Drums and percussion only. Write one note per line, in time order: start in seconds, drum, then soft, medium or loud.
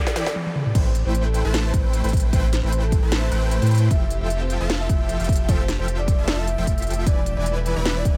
0.07 snare loud
0.16 snare loud
0.16 closed hi-hat medium
0.26 snare medium
0.36 high tom medium
0.46 high tom medium
0.55 mid tom medium
0.66 mid tom medium
0.75 kick loud
0.75 closed hi-hat medium
0.75 crash loud
0.95 closed hi-hat medium
1.15 closed hi-hat medium
1.34 closed hi-hat medium
1.54 snare loud
1.54 closed hi-hat medium
1.74 kick loud
1.74 closed hi-hat medium
1.93 closed hi-hat medium
2.04 closed hi-hat medium
2.09 closed hi-hat medium
2.13 kick loud
2.13 closed hi-hat medium
2.17 closed hi-hat medium
2.20 closed hi-hat medium
2.33 kick loud
2.33 closed hi-hat medium
2.53 snare medium
2.53 closed hi-hat medium
2.72 closed hi-hat medium
2.92 kick loud
2.92 closed hi-hat medium
3.12 snare loud
3.12 closed hi-hat medium
3.32 closed hi-hat medium
3.51 closed hi-hat medium
3.62 closed hi-hat medium
3.67 closed hi-hat medium
3.71 closed hi-hat soft
3.75 closed hi-hat medium
3.78 closed hi-hat medium
3.91 kick loud
3.91 closed hi-hat medium
4.10 closed hi-hat medium
4.30 closed hi-hat medium
4.50 closed hi-hat medium
4.70 snare loud
4.70 closed hi-hat medium
4.89 kick loud
4.89 closed hi-hat medium
5.09 closed hi-hat medium
5.20 closed hi-hat soft
5.24 closed hi-hat medium
5.29 kick loud
5.29 closed hi-hat soft
5.32 closed hi-hat medium
5.36 closed hi-hat medium
5.49 kick loud
5.49 closed hi-hat medium
5.68 snare medium
5.68 closed hi-hat medium
5.88 closed hi-hat medium
6.08 kick loud
6.08 closed hi-hat medium
6.28 snare loud
6.28 closed hi-hat medium
6.47 closed hi-hat medium
6.67 kick medium
6.67 closed hi-hat medium
6.78 closed hi-hat soft
6.82 closed hi-hat medium
6.87 closed hi-hat soft
6.90 closed hi-hat medium
6.93 closed hi-hat medium
7.07 kick loud
7.07 closed hi-hat medium
7.26 closed hi-hat medium
7.46 closed hi-hat medium
7.66 closed hi-hat medium
7.85 snare loud
7.85 closed hi-hat medium
8.05 kick loud
8.05 closed hi-hat medium